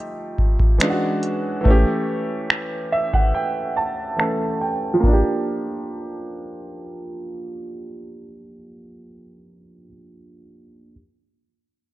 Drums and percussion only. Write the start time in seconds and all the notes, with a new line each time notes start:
0.38 kick
0.60 kick
0.80 finger snap, closed hi-hat
1.23 closed hi-hat
1.65 kick
2.50 finger snap
3.14 kick
4.20 finger snap
5.03 kick, crash